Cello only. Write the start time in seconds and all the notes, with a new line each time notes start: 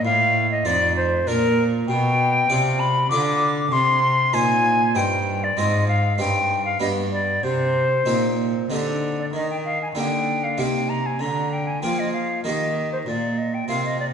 0.04 A2
0.66 F2
1.28 A#2
1.88 B2
2.49 C3
3.10 D3
3.71 C3
4.34 A#2
4.95 G2
5.56 G#2
6.19 G2
6.81 G2
7.44 C3
8.08 A#2
8.71 D3
9.34 D#3
9.96 D3
10.58 C3
11.20 D3
11.83 F3
12.46 D#3
13.08 A#2
13.68 C3